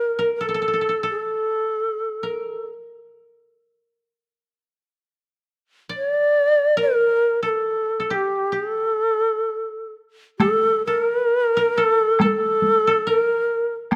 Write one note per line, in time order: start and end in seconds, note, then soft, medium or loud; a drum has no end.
0.00 0.18 A#4 medium
0.00 0.31 A#4 medium
0.00 0.25 D5 medium
0.19 0.47 A#4 medium
0.36 0.48 A#4 soft
0.41 0.48 A4 medium
0.46 1.10 A4 medium
0.46 0.54 A4 soft
0.54 0.61 A4 soft
0.62 0.67 A4 soft
0.68 0.73 A4 soft
0.74 0.81 A4 soft
0.81 0.88 A4 soft
0.89 1.03 A4 soft
1.03 2.29 A4 medium
1.10 2.68 A4 medium
2.23 4.07 A#4 soft
5.89 7.49 D5 medium
5.96 6.09 C#5 medium
6.09 6.76 D5 medium
6.77 7.49 A#4 medium
6.81 7.40 A#4 medium
7.43 7.99 A4 medium
7.43 7.50 A#4 medium
7.49 8.09 A4 medium
8.00 8.52 A4 soft
8.09 8.52 G4 medium
8.09 8.15 A4 medium
8.14 8.55 G4 medium
8.52 8.77 G4 soft
8.52 9.93 A4 medium
8.77 8.92 G#4 soft
8.92 10.40 A4 soft
10.39 10.82 A4 medium
10.39 10.87 A4 medium
10.39 taiko rim soft
10.39 taiko high soft
10.86 11.02 A4 medium
10.86 11.79 A#4 medium
11.02 11.56 A#4 medium
11.57 11.84 A#4 medium
11.77 12.20 A4 medium
11.77 12.21 A4 medium
12.20 12.87 A4 medium
12.20 12.28 A#4 medium
12.20 taiko rim soft
12.20 taiko high medium
12.27 13.11 A4 medium
12.62 taiko high soft
12.87 13.13 A4 medium
13.07 13.96 A#4 medium
13.07 13.74 A#4 medium
13.92 taiko rim medium
13.92 taiko high medium